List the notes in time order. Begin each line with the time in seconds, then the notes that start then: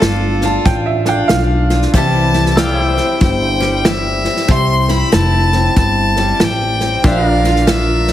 Already playing: D4 F4 A4 D5 F5
0.02 G1 A3, snare, hi-hat pedal
0.41 F4, snare
0.45 A5
0.65 A1 A2 G5, kick, snare
0.86 E5
1.05 D4 F4 A4 D5 F5 G5, snare
1.28 B1 A3 F5, snare, hi-hat pedal
1.70 F4, snare
1.82 snare
1.92 C2 C3 E3 G3 E4 G4 C5 E5 A5, kick, snare
1.97 C4 E4
2.34 E4, snare
2.46 snare
2.57 E3 A4 D5 F5 G5, snare, hi-hat pedal
2.80 G4 C5 E5
2.97 C4, snare
3.21 G1 G2 G5, kick, snare
3.60 G3, snare
3.85 E3 E5, snare, hi-hat pedal
4.24 C4, snare
4.36 snare
4.47 C2 C3 C4 E4 G4 C5 E5 C6, kick, snare
4.88 E4 B5, snare
5.12 F1 E3 A5, snare, hi-hat pedal
5.53 C4, snare
5.76 G1 G2 A5, kick, snare
6.16 G3, snare
6.40 A1 E3, snare, hi-hat pedal
6.44 G5
6.80 C4, snare
7.03 A#1 A#2 D4 F4 G4 A#4 C5 D5 E5, kick, snare
7.07 F5
7.30 F4 A#4 D5
7.44 F4, snare
7.56 snare
7.67 D3 E5, snare, hi-hat pedal
8.07 D4, snare